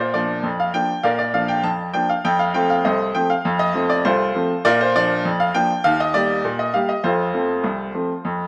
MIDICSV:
0, 0, Header, 1, 2, 480
1, 0, Start_track
1, 0, Key_signature, -2, "major"
1, 0, Tempo, 599401
1, 846, Time_signature, 2, 2, 24, 8
1, 6785, End_track
2, 0, Start_track
2, 0, Title_t, "Upright piano"
2, 0, Program_c, 0, 0
2, 0, Note_on_c, 0, 46, 72
2, 0, Note_on_c, 0, 72, 70
2, 30, Control_c, 0, 64, 127
2, 82, Note_off_c, 0, 46, 0
2, 110, Note_on_c, 0, 74, 76
2, 113, Note_on_c, 0, 53, 48
2, 116, Note_off_c, 0, 72, 0
2, 117, Note_on_c, 0, 58, 43
2, 119, Note_on_c, 0, 62, 47
2, 248, Note_off_c, 0, 53, 0
2, 251, Note_off_c, 0, 58, 0
2, 253, Note_off_c, 0, 62, 0
2, 346, Note_on_c, 0, 41, 67
2, 375, Control_c, 0, 64, 0
2, 478, Note_off_c, 0, 74, 0
2, 478, Note_on_c, 0, 77, 75
2, 559, Note_off_c, 0, 41, 0
2, 591, Note_on_c, 0, 53, 42
2, 592, Note_on_c, 0, 79, 83
2, 599, Note_on_c, 0, 58, 47
2, 601, Note_on_c, 0, 62, 50
2, 602, Note_off_c, 0, 77, 0
2, 727, Note_off_c, 0, 53, 0
2, 733, Note_off_c, 0, 58, 0
2, 734, Note_off_c, 0, 62, 0
2, 829, Note_on_c, 0, 77, 88
2, 832, Note_on_c, 0, 46, 75
2, 839, Note_off_c, 0, 79, 0
2, 839, Note_on_c, 0, 70, 71
2, 839, Note_on_c, 0, 74, 67
2, 938, Note_off_c, 0, 74, 0
2, 950, Note_on_c, 0, 74, 77
2, 954, Note_off_c, 0, 70, 0
2, 957, Note_off_c, 0, 77, 0
2, 1016, Control_c, 0, 64, 127
2, 1042, Note_off_c, 0, 46, 0
2, 1071, Note_on_c, 0, 53, 46
2, 1073, Note_on_c, 0, 77, 80
2, 1074, Note_on_c, 0, 58, 43
2, 1076, Note_on_c, 0, 62, 50
2, 1078, Note_off_c, 0, 74, 0
2, 1188, Note_on_c, 0, 79, 76
2, 1199, Note_off_c, 0, 77, 0
2, 1207, Note_off_c, 0, 53, 0
2, 1209, Note_off_c, 0, 58, 0
2, 1211, Note_off_c, 0, 62, 0
2, 1309, Note_on_c, 0, 81, 81
2, 1310, Note_on_c, 0, 41, 63
2, 1317, Note_off_c, 0, 79, 0
2, 1332, Control_c, 0, 64, 0
2, 1521, Note_off_c, 0, 41, 0
2, 1549, Note_on_c, 0, 53, 45
2, 1550, Note_on_c, 0, 79, 84
2, 1555, Note_on_c, 0, 58, 46
2, 1555, Note_on_c, 0, 62, 51
2, 1558, Note_off_c, 0, 81, 0
2, 1677, Note_on_c, 0, 77, 75
2, 1678, Note_off_c, 0, 79, 0
2, 1686, Note_off_c, 0, 53, 0
2, 1690, Note_off_c, 0, 58, 0
2, 1690, Note_off_c, 0, 62, 0
2, 1799, Note_on_c, 0, 41, 83
2, 1799, Note_on_c, 0, 79, 93
2, 1802, Note_off_c, 0, 77, 0
2, 1916, Note_on_c, 0, 77, 78
2, 1923, Note_off_c, 0, 79, 0
2, 1962, Control_c, 0, 64, 127
2, 2006, Note_off_c, 0, 41, 0
2, 2037, Note_on_c, 0, 79, 85
2, 2038, Note_on_c, 0, 53, 49
2, 2041, Note_off_c, 0, 77, 0
2, 2041, Note_on_c, 0, 57, 48
2, 2047, Note_on_c, 0, 60, 52
2, 2161, Note_off_c, 0, 79, 0
2, 2162, Note_on_c, 0, 77, 81
2, 2172, Note_off_c, 0, 53, 0
2, 2174, Note_off_c, 0, 57, 0
2, 2179, Note_off_c, 0, 60, 0
2, 2281, Note_on_c, 0, 75, 81
2, 2283, Note_on_c, 0, 36, 68
2, 2284, Note_off_c, 0, 77, 0
2, 2288, Note_on_c, 0, 72, 62
2, 2290, Note_on_c, 0, 69, 62
2, 2293, Control_c, 0, 64, 0
2, 2488, Note_off_c, 0, 36, 0
2, 2510, Note_off_c, 0, 72, 0
2, 2511, Note_off_c, 0, 69, 0
2, 2519, Note_on_c, 0, 79, 85
2, 2523, Note_off_c, 0, 75, 0
2, 2523, Note_on_c, 0, 53, 47
2, 2524, Note_on_c, 0, 57, 49
2, 2526, Note_on_c, 0, 60, 53
2, 2641, Note_on_c, 0, 77, 77
2, 2642, Note_off_c, 0, 79, 0
2, 2655, Note_off_c, 0, 53, 0
2, 2656, Note_off_c, 0, 57, 0
2, 2658, Note_off_c, 0, 60, 0
2, 2763, Note_on_c, 0, 41, 88
2, 2878, Note_on_c, 0, 75, 89
2, 2883, Note_off_c, 0, 77, 0
2, 2913, Control_c, 0, 64, 127
2, 2967, Note_off_c, 0, 41, 0
2, 2997, Note_on_c, 0, 53, 56
2, 3003, Note_on_c, 0, 57, 52
2, 3003, Note_on_c, 0, 60, 52
2, 3120, Note_off_c, 0, 75, 0
2, 3120, Note_on_c, 0, 74, 85
2, 3130, Note_off_c, 0, 53, 0
2, 3135, Note_off_c, 0, 57, 0
2, 3135, Note_off_c, 0, 60, 0
2, 3241, Note_off_c, 0, 74, 0
2, 3242, Note_on_c, 0, 72, 94
2, 3243, Note_on_c, 0, 36, 78
2, 3248, Control_c, 0, 64, 0
2, 3250, Note_on_c, 0, 65, 69
2, 3251, Note_on_c, 0, 69, 69
2, 3446, Note_off_c, 0, 36, 0
2, 3485, Note_on_c, 0, 53, 50
2, 3487, Note_on_c, 0, 57, 51
2, 3491, Note_on_c, 0, 60, 54
2, 3616, Note_off_c, 0, 53, 0
2, 3617, Note_off_c, 0, 57, 0
2, 3620, Note_off_c, 0, 60, 0
2, 3693, Note_off_c, 0, 65, 0
2, 3694, Note_off_c, 0, 69, 0
2, 3721, Note_off_c, 0, 72, 0
2, 3722, Note_on_c, 0, 74, 108
2, 3727, Note_on_c, 0, 46, 97
2, 3734, Note_on_c, 0, 65, 81
2, 3734, Note_on_c, 0, 70, 83
2, 3839, Note_off_c, 0, 65, 0
2, 3839, Note_off_c, 0, 70, 0
2, 3842, Note_off_c, 0, 74, 0
2, 3850, Note_on_c, 0, 72, 86
2, 3857, Control_c, 0, 64, 127
2, 3928, Note_off_c, 0, 46, 0
2, 3965, Note_off_c, 0, 72, 0
2, 3969, Note_on_c, 0, 74, 101
2, 3970, Note_on_c, 0, 53, 55
2, 3974, Note_on_c, 0, 58, 56
2, 3978, Note_on_c, 0, 62, 60
2, 4099, Note_off_c, 0, 53, 0
2, 4101, Note_off_c, 0, 58, 0
2, 4105, Note_off_c, 0, 62, 0
2, 4205, Note_on_c, 0, 41, 77
2, 4209, Control_c, 0, 64, 0
2, 4324, Note_off_c, 0, 74, 0
2, 4324, Note_on_c, 0, 77, 85
2, 4406, Note_off_c, 0, 41, 0
2, 4440, Note_on_c, 0, 79, 98
2, 4441, Note_off_c, 0, 77, 0
2, 4444, Note_on_c, 0, 53, 54
2, 4448, Note_on_c, 0, 58, 53
2, 4449, Note_on_c, 0, 62, 55
2, 4574, Note_off_c, 0, 53, 0
2, 4577, Note_off_c, 0, 58, 0
2, 4578, Note_off_c, 0, 62, 0
2, 4678, Note_on_c, 0, 77, 108
2, 4679, Note_off_c, 0, 79, 0
2, 4682, Note_on_c, 0, 39, 93
2, 4798, Note_off_c, 0, 77, 0
2, 4807, Note_on_c, 0, 75, 90
2, 4859, Control_c, 0, 64, 127
2, 4884, Note_off_c, 0, 39, 0
2, 4917, Note_on_c, 0, 74, 93
2, 4918, Note_on_c, 0, 55, 52
2, 4920, Note_on_c, 0, 58, 49
2, 4922, Note_off_c, 0, 75, 0
2, 4926, Note_on_c, 0, 67, 60
2, 5050, Note_off_c, 0, 55, 0
2, 5051, Note_off_c, 0, 58, 0
2, 5056, Note_off_c, 0, 67, 0
2, 5163, Control_c, 0, 64, 0
2, 5163, Note_on_c, 0, 46, 71
2, 5277, Note_off_c, 0, 74, 0
2, 5278, Note_on_c, 0, 75, 78
2, 5365, Note_off_c, 0, 46, 0
2, 5395, Note_on_c, 0, 77, 82
2, 5398, Note_off_c, 0, 75, 0
2, 5399, Note_on_c, 0, 55, 45
2, 5402, Note_on_c, 0, 58, 44
2, 5406, Note_on_c, 0, 67, 47
2, 5516, Note_on_c, 0, 75, 74
2, 5517, Note_off_c, 0, 77, 0
2, 5531, Note_off_c, 0, 55, 0
2, 5533, Note_off_c, 0, 58, 0
2, 5536, Note_off_c, 0, 67, 0
2, 5635, Note_on_c, 0, 72, 82
2, 5636, Note_on_c, 0, 41, 79
2, 5637, Note_off_c, 0, 75, 0
2, 5642, Note_on_c, 0, 69, 61
2, 5645, Note_on_c, 0, 65, 59
2, 5774, Control_c, 0, 64, 127
2, 5842, Note_off_c, 0, 41, 0
2, 5874, Note_on_c, 0, 53, 41
2, 5876, Note_on_c, 0, 57, 43
2, 5877, Note_on_c, 0, 60, 47
2, 6008, Note_off_c, 0, 53, 0
2, 6010, Note_off_c, 0, 57, 0
2, 6011, Note_off_c, 0, 60, 0
2, 6117, Note_on_c, 0, 36, 66
2, 6132, Control_c, 0, 64, 0
2, 6324, Note_off_c, 0, 36, 0
2, 6362, Note_on_c, 0, 53, 41
2, 6363, Note_on_c, 0, 57, 42
2, 6367, Note_on_c, 0, 60, 43
2, 6494, Note_off_c, 0, 53, 0
2, 6495, Note_off_c, 0, 57, 0
2, 6498, Note_off_c, 0, 60, 0
2, 6605, Note_on_c, 0, 41, 73
2, 6746, Control_c, 0, 64, 127
2, 6785, Note_off_c, 0, 41, 0
2, 6785, Note_off_c, 0, 65, 0
2, 6785, Note_off_c, 0, 69, 0
2, 6785, Note_off_c, 0, 72, 0
2, 6785, End_track
0, 0, End_of_file